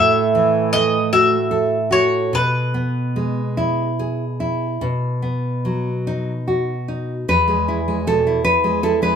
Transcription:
0, 0, Header, 1, 3, 480
1, 0, Start_track
1, 0, Key_signature, 4, "major"
1, 0, Tempo, 776197
1, 939, Tempo, 824176
1, 1420, Time_signature, 12, 3, 24, 8
1, 4299, Tempo, 771208
1, 5462, End_track
2, 0, Start_track
2, 0, Title_t, "Mandolin"
2, 0, Program_c, 0, 25
2, 0, Note_on_c, 0, 76, 80
2, 422, Note_off_c, 0, 76, 0
2, 450, Note_on_c, 0, 75, 92
2, 677, Note_off_c, 0, 75, 0
2, 697, Note_on_c, 0, 76, 70
2, 1153, Note_off_c, 0, 76, 0
2, 1175, Note_on_c, 0, 73, 72
2, 1402, Note_off_c, 0, 73, 0
2, 1422, Note_on_c, 0, 71, 66
2, 4044, Note_off_c, 0, 71, 0
2, 5462, End_track
3, 0, Start_track
3, 0, Title_t, "Nylon-string guitar"
3, 0, Program_c, 1, 24
3, 0, Note_on_c, 1, 45, 60
3, 0, Note_on_c, 1, 66, 62
3, 119, Note_off_c, 1, 66, 0
3, 215, Note_on_c, 1, 52, 47
3, 456, Note_on_c, 1, 57, 47
3, 601, Note_off_c, 1, 52, 0
3, 697, Note_on_c, 1, 66, 46
3, 842, Note_off_c, 1, 57, 0
3, 934, Note_on_c, 1, 69, 49
3, 1080, Note_off_c, 1, 66, 0
3, 1165, Note_on_c, 1, 66, 44
3, 1319, Note_off_c, 1, 69, 0
3, 1398, Note_off_c, 1, 45, 0
3, 1411, Note_on_c, 1, 47, 58
3, 1415, Note_off_c, 1, 66, 0
3, 1651, Note_on_c, 1, 59, 40
3, 1895, Note_on_c, 1, 56, 42
3, 2037, Note_off_c, 1, 59, 0
3, 2135, Note_on_c, 1, 64, 48
3, 2281, Note_off_c, 1, 56, 0
3, 2381, Note_on_c, 1, 68, 40
3, 2524, Note_off_c, 1, 64, 0
3, 2618, Note_on_c, 1, 64, 42
3, 2766, Note_off_c, 1, 68, 0
3, 2833, Note_off_c, 1, 47, 0
3, 2857, Note_on_c, 1, 47, 55
3, 2859, Note_off_c, 1, 64, 0
3, 3097, Note_on_c, 1, 59, 40
3, 3345, Note_on_c, 1, 54, 37
3, 3484, Note_off_c, 1, 59, 0
3, 3590, Note_on_c, 1, 63, 50
3, 3729, Note_off_c, 1, 54, 0
3, 3826, Note_on_c, 1, 66, 36
3, 3974, Note_off_c, 1, 63, 0
3, 4063, Note_on_c, 1, 63, 39
3, 4209, Note_off_c, 1, 66, 0
3, 4275, Note_off_c, 1, 47, 0
3, 4297, Note_on_c, 1, 40, 54
3, 4298, Note_off_c, 1, 63, 0
3, 4299, Note_on_c, 1, 71, 83
3, 4417, Note_on_c, 1, 56, 41
3, 4545, Note_on_c, 1, 64, 40
3, 4616, Note_off_c, 1, 56, 0
3, 4667, Note_on_c, 1, 56, 35
3, 4741, Note_off_c, 1, 64, 0
3, 4769, Note_off_c, 1, 71, 0
3, 4785, Note_on_c, 1, 47, 43
3, 4788, Note_on_c, 1, 69, 71
3, 4862, Note_off_c, 1, 56, 0
3, 4908, Note_on_c, 1, 64, 42
3, 4980, Note_off_c, 1, 47, 0
3, 5017, Note_off_c, 1, 69, 0
3, 5019, Note_on_c, 1, 71, 79
3, 5141, Note_on_c, 1, 56, 43
3, 5250, Note_off_c, 1, 71, 0
3, 5255, Note_off_c, 1, 64, 0
3, 5260, Note_on_c, 1, 69, 66
3, 5262, Note_on_c, 1, 64, 41
3, 5332, Note_off_c, 1, 56, 0
3, 5377, Note_on_c, 1, 56, 42
3, 5378, Note_off_c, 1, 69, 0
3, 5381, Note_on_c, 1, 71, 67
3, 5451, Note_off_c, 1, 64, 0
3, 5462, Note_off_c, 1, 40, 0
3, 5462, Note_off_c, 1, 56, 0
3, 5462, Note_off_c, 1, 71, 0
3, 5462, End_track
0, 0, End_of_file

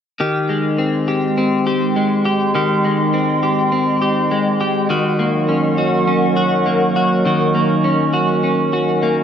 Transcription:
0, 0, Header, 1, 3, 480
1, 0, Start_track
1, 0, Key_signature, -4, "major"
1, 0, Tempo, 588235
1, 159, Time_signature, 4, 2, 24, 8
1, 7536, End_track
2, 0, Start_track
2, 0, Title_t, "Ambient pad"
2, 0, Program_c, 0, 92
2, 159, Note_on_c, 0, 75, 68
2, 160, Note_on_c, 0, 56, 77
2, 160, Note_on_c, 0, 79, 69
2, 160, Note_on_c, 0, 84, 85
2, 3967, Note_off_c, 0, 56, 0
2, 3967, Note_off_c, 0, 79, 0
2, 3967, Note_off_c, 0, 84, 0
2, 4001, Note_on_c, 0, 85, 84
2, 4004, Note_on_c, 0, 78, 72
2, 4005, Note_on_c, 0, 54, 80
2, 4005, Note_on_c, 0, 70, 70
2, 5902, Note_off_c, 0, 78, 0
2, 5921, Note_on_c, 0, 80, 70
2, 7536, Note_off_c, 0, 54, 0
2, 7536, Note_off_c, 0, 70, 0
2, 7536, Note_off_c, 0, 75, 0
2, 7536, Note_off_c, 0, 80, 0
2, 7536, Note_off_c, 0, 85, 0
2, 7536, End_track
3, 0, Start_track
3, 0, Title_t, "Clean electric guitar"
3, 0, Program_c, 1, 27
3, 163, Note_on_c, 1, 51, 64
3, 167, Note_on_c, 1, 67, 52
3, 401, Note_on_c, 1, 56, 43
3, 640, Note_on_c, 1, 60, 47
3, 871, Note_off_c, 1, 67, 0
3, 881, Note_on_c, 1, 67, 52
3, 1113, Note_off_c, 1, 60, 0
3, 1123, Note_on_c, 1, 60, 53
3, 1350, Note_off_c, 1, 67, 0
3, 1359, Note_on_c, 1, 67, 49
3, 1592, Note_off_c, 1, 56, 0
3, 1602, Note_on_c, 1, 56, 44
3, 1830, Note_off_c, 1, 67, 0
3, 1839, Note_on_c, 1, 67, 56
3, 2073, Note_off_c, 1, 67, 0
3, 2075, Note_off_c, 1, 51, 0
3, 2079, Note_on_c, 1, 51, 65
3, 2083, Note_on_c, 1, 67, 58
3, 2312, Note_off_c, 1, 56, 0
3, 2322, Note_on_c, 1, 56, 41
3, 2550, Note_off_c, 1, 60, 0
3, 2560, Note_on_c, 1, 60, 49
3, 2789, Note_off_c, 1, 67, 0
3, 2799, Note_on_c, 1, 67, 52
3, 3025, Note_off_c, 1, 60, 0
3, 3035, Note_on_c, 1, 60, 50
3, 3268, Note_off_c, 1, 67, 0
3, 3277, Note_on_c, 1, 67, 49
3, 3511, Note_off_c, 1, 56, 0
3, 3521, Note_on_c, 1, 56, 50
3, 3749, Note_off_c, 1, 67, 0
3, 3759, Note_on_c, 1, 67, 57
3, 3993, Note_off_c, 1, 51, 0
3, 3996, Note_off_c, 1, 67, 0
3, 3996, Note_on_c, 1, 51, 68
3, 4000, Note_on_c, 1, 66, 61
3, 4045, Note_off_c, 1, 60, 0
3, 4048, Note_off_c, 1, 56, 0
3, 4237, Note_on_c, 1, 58, 47
3, 4476, Note_on_c, 1, 61, 45
3, 4707, Note_off_c, 1, 66, 0
3, 4717, Note_on_c, 1, 66, 53
3, 4948, Note_off_c, 1, 61, 0
3, 4958, Note_on_c, 1, 61, 54
3, 5184, Note_off_c, 1, 66, 0
3, 5194, Note_on_c, 1, 66, 50
3, 5424, Note_off_c, 1, 58, 0
3, 5434, Note_on_c, 1, 58, 45
3, 5671, Note_off_c, 1, 66, 0
3, 5681, Note_on_c, 1, 66, 56
3, 5915, Note_off_c, 1, 66, 0
3, 5917, Note_off_c, 1, 51, 0
3, 5920, Note_on_c, 1, 51, 68
3, 5929, Note_on_c, 1, 66, 47
3, 6148, Note_off_c, 1, 58, 0
3, 6158, Note_on_c, 1, 58, 41
3, 6390, Note_off_c, 1, 61, 0
3, 6399, Note_on_c, 1, 61, 47
3, 6628, Note_off_c, 1, 66, 0
3, 6638, Note_on_c, 1, 66, 55
3, 6873, Note_off_c, 1, 61, 0
3, 6883, Note_on_c, 1, 61, 48
3, 7115, Note_off_c, 1, 66, 0
3, 7125, Note_on_c, 1, 66, 52
3, 7356, Note_off_c, 1, 58, 0
3, 7365, Note_on_c, 1, 58, 47
3, 7536, Note_off_c, 1, 51, 0
3, 7536, Note_off_c, 1, 58, 0
3, 7536, Note_off_c, 1, 61, 0
3, 7536, Note_off_c, 1, 66, 0
3, 7536, End_track
0, 0, End_of_file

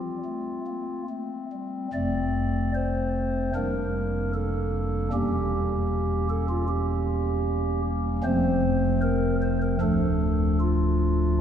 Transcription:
0, 0, Header, 1, 2, 480
1, 0, Start_track
1, 0, Key_signature, -1, "major"
1, 0, Tempo, 835655
1, 1108, Time_signature, 4, 2, 24, 8
1, 1576, Tempo, 792602
1, 3496, Tempo, 780234
1, 5896, Tempo, 806452
1, 6845, End_track
2, 0, Start_track
2, 0, Title_t, "Pipe organ"
2, 0, Program_c, 0, 19
2, 0, Note_on_c, 0, 55, 53
2, 0, Note_on_c, 0, 60, 41
2, 0, Note_on_c, 0, 65, 62
2, 99, Note_off_c, 0, 55, 0
2, 141, Note_on_c, 0, 57, 53
2, 346, Note_off_c, 0, 57, 0
2, 382, Note_on_c, 0, 58, 54
2, 588, Note_off_c, 0, 58, 0
2, 599, Note_off_c, 0, 65, 0
2, 628, Note_on_c, 0, 57, 49
2, 834, Note_off_c, 0, 57, 0
2, 874, Note_on_c, 0, 55, 54
2, 1075, Note_off_c, 0, 55, 0
2, 1083, Note_off_c, 0, 60, 0
2, 1110, Note_on_c, 0, 41, 61
2, 1111, Note_on_c, 0, 29, 62
2, 1111, Note_on_c, 0, 60, 51
2, 1111, Note_on_c, 0, 74, 114
2, 1112, Note_on_c, 0, 57, 53
2, 1562, Note_off_c, 0, 74, 0
2, 1576, Note_on_c, 0, 72, 88
2, 2036, Note_off_c, 0, 29, 0
2, 2036, Note_off_c, 0, 41, 0
2, 2036, Note_off_c, 0, 60, 0
2, 2037, Note_off_c, 0, 57, 0
2, 2045, Note_off_c, 0, 72, 0
2, 2065, Note_on_c, 0, 62, 47
2, 2065, Note_on_c, 0, 70, 90
2, 2066, Note_on_c, 0, 41, 61
2, 2067, Note_on_c, 0, 55, 47
2, 2068, Note_on_c, 0, 58, 46
2, 2069, Note_on_c, 0, 29, 61
2, 2530, Note_off_c, 0, 70, 0
2, 2544, Note_on_c, 0, 69, 93
2, 2996, Note_off_c, 0, 62, 0
2, 2997, Note_off_c, 0, 41, 0
2, 2997, Note_off_c, 0, 55, 0
2, 2997, Note_off_c, 0, 58, 0
2, 2998, Note_off_c, 0, 29, 0
2, 3004, Note_off_c, 0, 69, 0
2, 3019, Note_on_c, 0, 58, 53
2, 3021, Note_on_c, 0, 40, 64
2, 3021, Note_on_c, 0, 61, 55
2, 3021, Note_on_c, 0, 67, 105
2, 3022, Note_on_c, 0, 28, 64
2, 3022, Note_on_c, 0, 55, 54
2, 3714, Note_off_c, 0, 67, 0
2, 3732, Note_on_c, 0, 69, 104
2, 3833, Note_off_c, 0, 69, 0
2, 3852, Note_on_c, 0, 65, 90
2, 3953, Note_off_c, 0, 65, 0
2, 3967, Note_on_c, 0, 67, 96
2, 4665, Note_off_c, 0, 67, 0
2, 4906, Note_off_c, 0, 58, 0
2, 4907, Note_off_c, 0, 40, 0
2, 4907, Note_off_c, 0, 61, 0
2, 4908, Note_off_c, 0, 28, 0
2, 4908, Note_off_c, 0, 55, 0
2, 4923, Note_on_c, 0, 57, 60
2, 4923, Note_on_c, 0, 60, 66
2, 4924, Note_on_c, 0, 53, 59
2, 4925, Note_on_c, 0, 29, 76
2, 4926, Note_on_c, 0, 41, 74
2, 4926, Note_on_c, 0, 72, 121
2, 5394, Note_off_c, 0, 72, 0
2, 5407, Note_on_c, 0, 70, 116
2, 5613, Note_off_c, 0, 70, 0
2, 5651, Note_on_c, 0, 72, 109
2, 5754, Note_off_c, 0, 72, 0
2, 5777, Note_on_c, 0, 70, 98
2, 5864, Note_off_c, 0, 57, 0
2, 5865, Note_off_c, 0, 53, 0
2, 5865, Note_off_c, 0, 60, 0
2, 5866, Note_off_c, 0, 29, 0
2, 5866, Note_off_c, 0, 41, 0
2, 5877, Note_off_c, 0, 70, 0
2, 5891, Note_on_c, 0, 57, 56
2, 5893, Note_on_c, 0, 26, 69
2, 5893, Note_on_c, 0, 38, 72
2, 5893, Note_on_c, 0, 53, 53
2, 5893, Note_on_c, 0, 69, 102
2, 5894, Note_on_c, 0, 62, 59
2, 6353, Note_off_c, 0, 69, 0
2, 6366, Note_on_c, 0, 65, 97
2, 6828, Note_off_c, 0, 57, 0
2, 6829, Note_off_c, 0, 26, 0
2, 6829, Note_off_c, 0, 38, 0
2, 6829, Note_off_c, 0, 53, 0
2, 6829, Note_off_c, 0, 62, 0
2, 6838, Note_off_c, 0, 65, 0
2, 6845, End_track
0, 0, End_of_file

